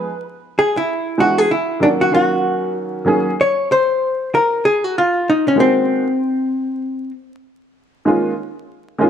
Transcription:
Already playing: hollow-body jazz guitar B4
0.59 hollow-body jazz guitar G#4
0.77 hollow-body jazz guitar E4
1.18 upright piano E3 G#3 B3 D4 F#4, hollow-body jazz guitar F#4
1.38 hollow-body jazz guitar G#4
1.51 hollow-body jazz guitar E4
1.80 upright piano D#3 F#3 A#3 C#4 F#4, hollow-body jazz guitar D4
2.01 hollow-body jazz guitar F#4
2.11 upright piano D#3 F#3 A#3 C#4 F#4, hollow-body jazz guitar F#4
3.05 upright piano D#3 F#3 A#3 C#4 G#4
3.41 hollow-body jazz guitar C#5
3.72 hollow-body jazz guitar C5
4.35 hollow-body jazz guitar A#4
4.65 hollow-body jazz guitar G#4
4.84 hollow-body jazz guitar F#4
4.98 hollow-body jazz guitar F4
5.30 hollow-body jazz guitar D#4
5.48 hollow-body jazz guitar C#4
5.55 upright piano D#3 G#3 A#3 C4 F#4
5.60 hollow-body jazz guitar C4
8.05 upright piano D#3 G#3 A#3 C#4 F4
8.99 upright piano D#3 G#3 A#3 C#4 F4

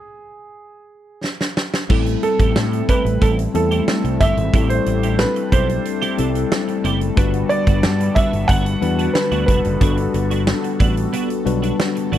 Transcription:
Already playing: grand piano G#4
1.24 snare
1.41 snare
1.57 snare
1.74 snare
1.89 fretless electric bass A1, tine electric piano G3 C4 E4 A4, analog synth pad G3 A3 C4 E4 A4, clean electric guitar C4 E4 G4, kick, crash
2.06 muted clean electric guitar stroke, closed hi-hat
2.23 grand piano A4, muted clean electric guitar stroke, closed hi-hat
2.40 fretless electric bass A1, clean electric guitar C4 E4 G4, kick, closed hi-hat
2.56 fretless electric bass A2, muted clean electric guitar stroke, snare
2.72 muted clean electric guitar stroke, closed hi-hat
2.89 clean electric guitar C4 E4 G4, grand piano B4, kick, closed hi-hat
3.05 fretless electric bass A1, muted clean electric guitar stroke, closed hi-hat
3.21 fretless electric bass A1, clean electric guitar C4 E4 G4, grand piano A4, kick, closed hi-hat
3.38 muted clean electric guitar stroke, closed hi-hat
3.54 fretless electric bass E2, tine electric piano G3 C4 E4 A4, grand piano A4, muted clean electric guitar stroke, closed hi-hat
3.71 clean electric guitar C4 E4 G4, closed hi-hat
3.88 snare
4.04 fretless electric bass C2, muted clean electric guitar stroke, closed hi-hat
4.20 fretless electric bass G1, clean electric guitar C4 E4 G4, grand piano E5, kick, closed hi-hat
4.37 fretless electric bass G#1, muted clean electric guitar stroke, closed hi-hat
4.53 fretless electric bass A1, tine electric piano G3 C4 E4 A4, clean electric guitar C4 E4 G4, analog synth pad D4, kick, closed hi-hat
4.69 grand piano C5, closed hi-hat
4.86 fretless electric bass A1, muted clean electric guitar stroke, closed hi-hat
5.03 clean electric guitar C4 E4 G4, closed hi-hat
5.19 grand piano B4, muted clean electric guitar stroke, snare
5.36 muted clean electric guitar stroke, closed hi-hat
5.52 fretless electric bass B1, clean electric guitar C4 E4 G4, grand piano C5, kick, closed hi-hat
5.69 muted clean electric guitar stroke, closed hi-hat
5.85 muted clean electric guitar stroke, closed hi-hat
6.02 clean electric guitar C4 E4 G4, closed hi-hat
6.18 fretless electric bass C2, tine electric piano G3 C4 E4 A4, clean electric guitar C4 E4 G4, closed hi-hat
6.35 muted clean electric guitar stroke, closed hi-hat
6.52 snare
6.68 muted clean electric guitar stroke, closed hi-hat
6.84 fretless electric bass F#1, clean electric guitar C4 E4 G4, closed hi-hat
7.01 muted clean electric guitar stroke, closed hi-hat
7.16 fretless electric bass G1, analog synth pad D3 B3 F#4, tine electric piano G3 D4 F#4 B4, clean electric guitar B3 D4 F#4, kick, closed hi-hat
7.34 muted clean electric guitar stroke, closed hi-hat
7.49 grand piano D5, muted clean electric guitar stroke, closed hi-hat
7.67 fretless electric bass G1, clean electric guitar B3 D4 F#4, kick, closed hi-hat
7.83 fretless electric bass G2, muted clean electric guitar stroke, snare
8.00 muted clean electric guitar stroke, closed hi-hat
8.15 clean electric guitar B3 D4 F#4, grand piano E5, kick, closed hi-hat
8.33 fretless electric bass G1, muted clean electric guitar stroke, closed hi-hat
8.48 fretless electric bass G1, clean electric guitar B3 D4 F#4, grand piano F#5, kick, closed hi-hat
8.66 muted clean electric guitar stroke, closed hi-hat
8.81 fretless electric bass E2, tine electric piano G3 D4 F#4 B4, muted clean electric guitar stroke, closed hi-hat
8.99 clean electric guitar B3 D4 F#4, closed hi-hat
9.13 grand piano B4, muted clean electric guitar stroke, snare
9.32 fretless electric bass D2, clean electric guitar B3 D4 F#4, closed hi-hat
9.46 fretless electric bass F1, clean electric guitar B3 D4 F#4, grand piano B4, kick, closed hi-hat
9.64 fretless electric bass F#1, muted clean electric guitar stroke, closed hi-hat
9.80 fretless electric bass G1, tine electric piano G3 D4 F#4 A4, clean electric guitar B3 D4 F#4, kick, closed hi-hat
9.97 muted clean electric guitar stroke, closed hi-hat
10.14 fretless electric bass G1, muted clean electric guitar stroke, closed hi-hat
10.31 clean electric guitar B3 D4 F#4, closed hi-hat
10.47 muted clean electric guitar stroke, snare
10.64 muted clean electric guitar stroke, closed hi-hat
10.80 fretless electric bass A1, clean electric guitar B3 D4 F#4, kick, closed hi-hat
10.97 muted clean electric guitar stroke, closed hi-hat
11.13 clean electric guitar B3 D4 F#4, closed hi-hat
11.30 muted clean electric guitar stroke, closed hi-hat
11.45 fretless electric bass B1, tine electric piano G3 D4 F#4 B4, muted clean electric guitar stroke, closed hi-hat
11.63 clean electric guitar B3 D4 F#4, closed hi-hat
11.80 snare
11.96 muted clean electric guitar stroke, closed hi-hat
12.12 fretless electric bass G#1, clean electric guitar B3 D4 F#4, closed hi-hat

